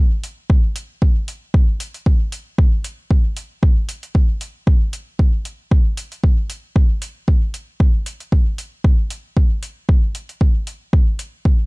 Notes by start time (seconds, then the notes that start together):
0.24 open hi-hat
0.50 kick
0.76 open hi-hat
1.02 kick
1.28 open hi-hat
1.54 kick
1.80 open hi-hat
1.94 open hi-hat
2.06 kick
2.32 open hi-hat
2.58 kick
2.84 open hi-hat
3.11 kick
3.37 open hi-hat
3.63 kick
3.89 open hi-hat
4.03 open hi-hat
4.15 kick
4.41 open hi-hat
4.67 kick
4.93 open hi-hat
5.19 kick
5.45 open hi-hat
5.71 kick
5.97 open hi-hat
6.12 open hi-hat
6.24 kick
6.50 open hi-hat
6.76 kick
7.02 open hi-hat
7.28 kick
7.54 open hi-hat
7.80 kick
8.06 open hi-hat
8.20 open hi-hat
8.32 kick
8.58 open hi-hat
8.84 kick
9.10 open hi-hat
9.37 kick
9.63 open hi-hat
9.89 kick
10.15 open hi-hat
10.29 open hi-hat
10.41 kick
10.67 open hi-hat
10.93 kick
11.19 open hi-hat
11.45 kick